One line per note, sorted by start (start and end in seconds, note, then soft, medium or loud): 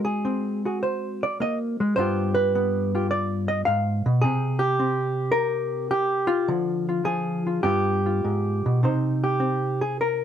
0.00 1.79 G#3 medium
0.00 0.24 C4 soft
0.00 0.64 F#4 soft
0.05 0.64 G#4 medium
0.25 1.40 C4 medium
0.65 1.95 F#4 soft
0.65 0.82 G#4 soft
0.83 1.80 C5 medium
1.23 1.41 D5 medium
1.40 1.80 A#3 medium
1.40 1.58 D#5 medium
1.80 1.98 G#3 medium
1.96 3.67 G2 medium
1.96 2.54 B3 soft
1.96 2.94 F4 medium
1.96 2.95 G4 soft
1.96 2.34 C5 loud
2.34 3.48 B4 medium
2.55 4.22 B3 medium
2.95 4.22 F4 soft
2.95 3.10 G4 soft
3.11 3.48 D5 medium
3.48 3.65 D#5 medium
3.65 4.05 G#2 medium
3.65 4.23 F5 medium
4.06 4.23 B2 medium
4.21 6.49 C3 medium
4.21 4.78 C4 soft
4.21 4.61 G#4 loud
4.59 5.90 G4 medium
4.79 6.47 C4 medium
5.32 6.47 A#4 loud
5.91 6.48 G4 medium
6.27 6.86 F4 medium
6.48 7.62 D3 medium
6.48 7.04 F3 soft
6.89 7.45 F4 soft
7.05 7.63 F3 medium
7.05 7.63 G#4 loud
7.47 7.62 F4 soft
7.63 8.23 G2 medium
7.63 8.80 B3 soft
7.63 8.05 F4 soft
7.63 8.82 G4 medium
8.06 8.81 F4 soft
8.25 8.65 G#2 medium
8.66 8.83 B2 medium
8.83 10.24 C3 medium
8.83 9.39 C4 soft
8.83 10.24 D#4 soft
8.83 9.23 C5 soft
9.24 9.81 G4 medium
9.40 10.24 C4 medium
9.81 9.99 G#4 medium
10.01 10.24 A#4 medium